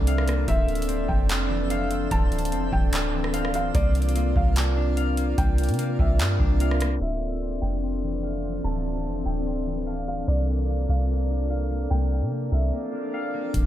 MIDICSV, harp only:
0, 0, Header, 1, 2, 480
1, 0, Start_track
1, 0, Key_signature, -1, "minor"
1, 0, Tempo, 408163
1, 564, Time_signature, 4, 2, 24, 8
1, 16067, End_track
2, 0, Start_track
2, 0, Title_t, "Harp"
2, 0, Program_c, 0, 46
2, 0, Note_on_c, 0, 58, 87
2, 0, Note_on_c, 0, 62, 78
2, 89, Note_on_c, 0, 77, 95
2, 319, Note_off_c, 0, 58, 0
2, 324, Note_on_c, 0, 58, 85
2, 562, Note_on_c, 0, 60, 90
2, 1030, Note_off_c, 0, 60, 0
2, 1034, Note_on_c, 0, 60, 90
2, 1519, Note_off_c, 0, 60, 0
2, 1523, Note_on_c, 0, 60, 92
2, 1763, Note_on_c, 0, 52, 86
2, 1834, Note_off_c, 0, 77, 0
2, 2007, Note_on_c, 0, 77, 101
2, 2236, Note_off_c, 0, 60, 0
2, 2241, Note_on_c, 0, 60, 83
2, 2473, Note_off_c, 0, 60, 0
2, 2478, Note_on_c, 0, 60, 94
2, 2957, Note_off_c, 0, 60, 0
2, 2962, Note_on_c, 0, 60, 87
2, 3135, Note_off_c, 0, 62, 0
2, 3440, Note_off_c, 0, 60, 0
2, 3445, Note_on_c, 0, 60, 90
2, 3668, Note_off_c, 0, 52, 0
2, 3682, Note_on_c, 0, 52, 81
2, 3752, Note_off_c, 0, 77, 0
2, 3922, Note_on_c, 0, 77, 103
2, 4105, Note_off_c, 0, 58, 0
2, 4167, Note_off_c, 0, 60, 0
2, 4172, Note_on_c, 0, 60, 83
2, 4406, Note_on_c, 0, 58, 102
2, 4463, Note_off_c, 0, 52, 0
2, 4877, Note_off_c, 0, 58, 0
2, 4882, Note_on_c, 0, 58, 91
2, 5357, Note_off_c, 0, 58, 0
2, 5362, Note_on_c, 0, 58, 83
2, 5606, Note_on_c, 0, 62, 84
2, 5839, Note_off_c, 0, 77, 0
2, 5844, Note_on_c, 0, 77, 100
2, 6078, Note_off_c, 0, 58, 0
2, 6083, Note_on_c, 0, 58, 85
2, 6322, Note_off_c, 0, 58, 0
2, 6326, Note_on_c, 0, 58, 93
2, 6799, Note_off_c, 0, 58, 0
2, 6803, Note_on_c, 0, 58, 95
2, 7282, Note_off_c, 0, 58, 0
2, 7287, Note_on_c, 0, 58, 92
2, 7518, Note_off_c, 0, 62, 0
2, 7522, Note_on_c, 0, 62, 82
2, 7700, Note_off_c, 0, 60, 0
2, 7768, Note_off_c, 0, 77, 0
2, 7772, Note_on_c, 0, 77, 95
2, 8000, Note_off_c, 0, 58, 0
2, 8005, Note_on_c, 0, 58, 80
2, 8245, Note_on_c, 0, 60, 86
2, 8711, Note_off_c, 0, 60, 0
2, 8716, Note_on_c, 0, 60, 79
2, 9198, Note_off_c, 0, 60, 0
2, 9203, Note_on_c, 0, 60, 87
2, 9446, Note_on_c, 0, 52, 80
2, 9517, Note_off_c, 0, 77, 0
2, 9686, Note_on_c, 0, 77, 101
2, 9917, Note_off_c, 0, 60, 0
2, 9922, Note_on_c, 0, 60, 78
2, 10154, Note_off_c, 0, 60, 0
2, 10159, Note_on_c, 0, 60, 87
2, 10639, Note_off_c, 0, 60, 0
2, 10644, Note_on_c, 0, 60, 85
2, 10814, Note_off_c, 0, 62, 0
2, 11120, Note_off_c, 0, 60, 0
2, 11125, Note_on_c, 0, 60, 85
2, 11346, Note_off_c, 0, 52, 0
2, 11360, Note_on_c, 0, 52, 77
2, 11430, Note_off_c, 0, 77, 0
2, 11601, Note_on_c, 0, 77, 95
2, 11786, Note_off_c, 0, 58, 0
2, 11845, Note_off_c, 0, 60, 0
2, 11850, Note_on_c, 0, 60, 75
2, 12084, Note_on_c, 0, 58, 92
2, 12143, Note_off_c, 0, 52, 0
2, 12558, Note_off_c, 0, 58, 0
2, 12563, Note_on_c, 0, 58, 81
2, 13037, Note_off_c, 0, 58, 0
2, 13041, Note_on_c, 0, 58, 78
2, 13284, Note_on_c, 0, 62, 78
2, 13518, Note_off_c, 0, 77, 0
2, 13523, Note_on_c, 0, 77, 93
2, 13756, Note_off_c, 0, 58, 0
2, 13761, Note_on_c, 0, 58, 82
2, 14000, Note_off_c, 0, 58, 0
2, 14005, Note_on_c, 0, 58, 90
2, 14476, Note_off_c, 0, 58, 0
2, 14480, Note_on_c, 0, 58, 90
2, 14958, Note_off_c, 0, 58, 0
2, 14962, Note_on_c, 0, 58, 87
2, 15196, Note_off_c, 0, 62, 0
2, 15201, Note_on_c, 0, 62, 77
2, 15378, Note_off_c, 0, 60, 0
2, 15445, Note_off_c, 0, 77, 0
2, 15449, Note_on_c, 0, 77, 92
2, 15678, Note_off_c, 0, 58, 0
2, 15683, Note_on_c, 0, 58, 76
2, 16067, Note_off_c, 0, 58, 0
2, 16067, Note_off_c, 0, 62, 0
2, 16067, Note_off_c, 0, 77, 0
2, 16067, End_track
0, 0, End_of_file